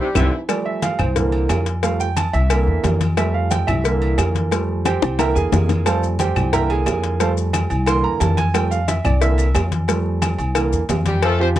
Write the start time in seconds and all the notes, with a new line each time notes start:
0.00 G3 G4
0.15 C2 D3 E3 C4 E4 G4, cowbell, low conga, high timbale, claves, maracas
0.48 F3 G3 A3 D5, cowbell, high conga, low agogo, claves, maracas
0.66 E5, high conga
0.82 F5, cowbell, high conga, low timbale, low agogo, maracas
0.99 C2 C5, high conga, low conga, low agogo, claves, maracas
1.15 D3 E3 A#3, cowbell, high conga, low conga, maracas
1.32 high conga, low agogo
1.49 F2, cowbell, high conga, low timbale, low agogo, claves, maracas
1.66 cowbell, maracas
1.83 F3 G3 A3 F5, cowbell, high conga, low agogo, maracas
2.00 G5, high conga, maracas
2.17 A5, cowbell, high conga, low timbale, low agogo, claves, maracas
2.33 C2 E5, high conga, low agogo, maracas
2.50 D3 E3 A#3, cowbell, high conga, low agogo, claves, maracas
2.67 E2, high conga
2.84 F2, cowbell, high conga, low timbale, low agogo, maracas
3.01 cowbell, high conga, low agogo, maracas
3.17 F3 G3 A3 E5, cowbell, low agogo, claves, maracas
3.34 F5, high conga
3.51 G5, cowbell, high conga, low timbale, low agogo, maracas
3.67 C2 E5, high conga, low conga, low agogo, claves, maracas
3.84 D3 E3 A#3, cowbell, high conga, maracas
4.01 high conga, low agogo
4.18 F2, cowbell, high conga, low timbale, low agogo, claves, maracas
4.35 cowbell, high conga, maracas
4.51 F3 G3 A3, cowbell, low agogo, maracas
4.69 high conga
4.85 G4 C5 G5, cowbell, high bongo, high conga, low timbale, low agogo, claves, maracas
5.02 C2, low bongo, high conga, low agogo, maracas
5.18 D3 E3 A#3 A#4 E5 G5 A#5, cowbell, low bongo, high conga, low agogo, claves, maracas
5.35 E2 G#4 G#5, high conga, maracas
5.52 F2, cowbell, low bongo, high conga, low timbale, low agogo, maracas
5.69 cowbell, low bongo, high conga, low agogo, maracas
5.85 F3 G3 A3 A4 C5 F5 A5, cowbell, high conga, low agogo, claves, maracas
6.02 high conga, maracas
6.19 G4 C5 G5, cowbell, high conga, low timbale, low agogo, maracas
6.36 C2, high conga, low conga, low agogo, claves, maracas
6.52 D3 E3 A#3 A#4 E5 G5 A#5, cowbell, high conga, low conga, maracas
6.70 G#4 G#5, high conga, low agogo
6.86 F2, cowbell, high conga, low timbale, low agogo, claves, maracas
7.03 cowbell, maracas
7.20 F3 G3 A3 A4 C5 F5 A5, cowbell, high conga, low agogo, maracas
7.37 high conga, maracas
7.53 cowbell, high conga, low timbale, low agogo, claves, maracas
7.70 C2, high conga, low agogo, maracas
7.86 D3 E3 A#3 C6, cowbell, high conga, low agogo, claves, maracas
8.04 E2 A#5, high conga
8.20 F2 A5, cowbell, high conga, low timbale, low agogo, maracas
8.37 G#5, cowbell, high conga, low agogo, maracas
8.54 F3 G3 A3 G5, cowbell, high conga, low agogo, claves, maracas
8.71 F5, high conga, maracas
8.88 E5, cowbell, high conga, low timbale, low agogo, maracas
9.05 C2 D5, high conga, low conga, low agogo, claves, maracas
9.21 D3 E3 A#3 E5, cowbell, high conga, maracas
9.38 high conga, low agogo, maracas
9.55 F2, cowbell, high conga, low timbale, low agogo, claves, maracas
9.72 cowbell, high conga, maracas
9.88 F3 G3 A3, cowbell, low agogo, maracas
10.06 high conga
10.22 cowbell, high conga, low timbale, low agogo, claves, maracas
10.38 C2, high conga, low agogo, maracas
10.55 D3 E3 A#3, cowbell, high conga, low agogo, claves, maracas
10.72 E2, high conga, maracas
10.89 F2, cowbell, high conga, low timbale, low agogo, maracas
11.06 G3 G4, cowbell, high conga, low agogo, maracas
11.22 F3 A3 A4, cowbell, high conga, low agogo, claves
11.40 F3 C4 F4 G4 C5, high conga
11.56 cowbell, high conga, low timbale, low agogo